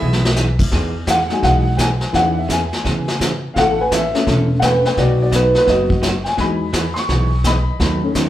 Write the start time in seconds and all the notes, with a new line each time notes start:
Already playing: B3 E5
0.01 B1 E3 B3 D#4 G#4
0.13 snare
0.25 snare
0.36 E3 B3 D#4 G#4, snare, hi-hat pedal
0.59 kick, crash
0.71 E2 E3 B3 D#4 G#4, brush sweep, kick, snare
1.07 E3 B3 D#4 G#4 F#5, kick, snare, hi-hat pedal
1.30 F#3 G#3 D#4 G#5, snare
1.43 B1 E3 B3 D#4 G#4 F#5, brush sweep, kick, snare
1.76 E3 B3 D#4 G#4 G5, kick, snare, hi-hat pedal
1.80 G#5
2.01 snare
2.12 E2 E3 B3 C#4 D#4 G#4 F#5, brush sweep, kick, snare
2.38 E5
2.48 E3 B3 C#4 G#4 G#5, kick, snare, hi-hat pedal
2.73 snare
2.83 C#3 E3 B3 C#4 G#4, brush sweep, kick, snare
3.08 snare
3.19 E3 B3 C#4 G#4, kick, snare, hi-hat pedal
3.54 A1 B2 E3 A3 C#4 A4 F5, brush sweep, kick, snare
3.58 A4 F#5
3.81 B4 G#5
3.91 B2 E3 A3 C#4 A4 E5, kick, snare, hi-hat pedal
4.13 A3 B3 C#4, snare
4.26 E1 B2 E3 A3 C#4 A4, brush sweep, kick, snare
4.60 B2 E3 A3 C#4 A4 F#5, kick, snare, hi-hat pedal
4.64 B4 G5
4.85 B4 G5, snare
4.96 B1 B2 F#3 B3 D#4 F#4 D5, brush sweep, kick, snare
5.21 F#4 D5
5.31 B2 F#3 B3 D#4 F#4, kick, snare, hi-hat pedal
5.35 B4
5.55 D#4 B4, snare
5.66 F#1 B2 F#3 B3 D#4 F#4 D#5, brush sweep, kick, snare
5.90 kick
6.01 B2 F#3 B3 D#4 F#4, kick, snare, hi-hat pedal
6.24 G5, snare
6.28 G#5
6.37 E2 E3 F#3 G#3 B3 D#4 G#4 B5, brush sweep, kick, snare
6.73 E3 B3 D#4 G#4, kick, snare, hi-hat pedal
6.94 C6, snare
6.99 C#6
7.09 B1 E3 B3 D#4 G#4, brush sweep, kick, snare
7.44 E3 B3 D#4 G#4 D#5 B5, kick, snare, hi-hat pedal
7.80 D#2 D#3 F#3 B3 D#4 A4, brush sweep, kick, snare
8.02 D#3 A3 C#4
8.15 D#3 F#3 B3 D#4 A4, kick, snare, hi-hat pedal